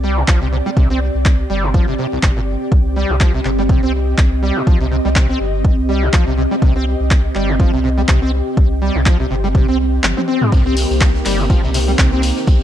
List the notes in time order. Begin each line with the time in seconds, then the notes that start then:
Already playing: C2 C4 G4 D5
0.04 G3
0.17 A#2
0.28 C2 F3, kick, clap
0.42 C3
0.52 C3
0.66 G3
0.77 C2 C3, kick
0.90 C4
1.15 C2
1.25 kick, clap
1.50 G1 G3
1.63 A#2
1.74 F3, kick
1.88 G1 C3
1.99 C3
2.12 C2
2.23 G1 C3, kick, clap
2.37 A#2
2.72 C2, kick
2.96 G3 D#5
3.10 C2 A#2
3.21 F3, kick, clap
3.34 C3
3.45 G1 C3, clap
3.59 G3
3.69 C3, kick
3.83 C2 C4
4.18 C2, kick, clap
4.43 G3
4.56 A#2
4.67 C2 F3, kick
4.81 C3
4.91 C3
5.05 C2 G3
5.16 C3, kick, clap
5.29 C4
5.40 G1
5.65 kick
5.78 C2
5.89 G3
6.02 A#2
6.13 C2 F3, kick, clap
6.27 C3
6.38 C3
6.51 G3
6.62 C2 C3, kick
6.76 C4
7.00 C2
7.11 kick, clap
7.35 G1 G3, clap
7.49 A#2
7.60 F3, kick
7.73 C2 C3
7.84 C3
7.98 G3
8.08 C2 C3, kick, clap
8.22 C4
8.57 C2, kick
8.82 G3
8.95 C2 A#2
9.06 F3, kick, clap
9.20 C3
9.30 G1 C3
9.44 G3
9.55 C3, kick
9.68 C2 C4
10.04 G1, clap, high tom
10.17 C4, high tom
10.28 C4
10.42 G3, mid tom
10.52 C2 C3 D#3 A#3 C4 G4, kick, ride, shekere
10.66 C4, shekere
10.77 open hi-hat, ride, shekere
10.90 C2, ride, shekere
11.01 kick, snare, clap, ride
11.15 snare
11.25 G1 G3, clap, open hi-hat, ride, shekere
11.39 A#2, ride, shekere
11.50 F3 C5, kick, ride, shekere
11.63 C2 C3, shekere
11.74 C3, open hi-hat, ride, shekere
11.88 G3, shekere
11.98 C2 C3, kick, snare, clap, shekere
12.12 C4, snare
12.22 open hi-hat, ride, shekere
12.37 snare, shekere
12.47 C2, kick, ride, shekere